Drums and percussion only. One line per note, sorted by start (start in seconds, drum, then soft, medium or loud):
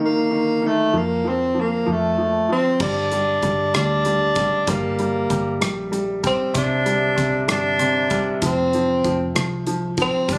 2.80 kick medium
2.80 crash medium
3.11 closed hi-hat soft
3.42 kick medium
3.42 closed hi-hat soft
3.74 cross-stick medium
3.74 closed hi-hat medium
4.05 closed hi-hat soft
4.35 kick medium
4.35 closed hi-hat soft
4.67 kick medium
4.67 closed hi-hat medium
4.99 closed hi-hat soft
5.30 kick medium
5.30 closed hi-hat soft
5.61 cross-stick medium
5.61 closed hi-hat medium
5.93 closed hi-hat soft
6.24 kick medium
6.24 closed hi-hat soft
6.54 kick loud
6.54 closed hi-hat medium
6.86 closed hi-hat soft
7.18 kick medium
7.18 cross-stick soft
7.18 closed hi-hat soft
7.48 cross-stick loud
7.48 closed hi-hat medium
7.79 closed hi-hat medium
8.10 kick medium
8.10 closed hi-hat soft
8.42 kick medium
8.42 closed hi-hat medium
8.73 closed hi-hat soft
9.04 kick medium
9.04 closed hi-hat soft
9.36 cross-stick medium
9.36 closed hi-hat medium
9.67 closed hi-hat soft
9.97 kick medium
9.97 closed hi-hat soft
10.29 kick medium
10.29 closed hi-hat medium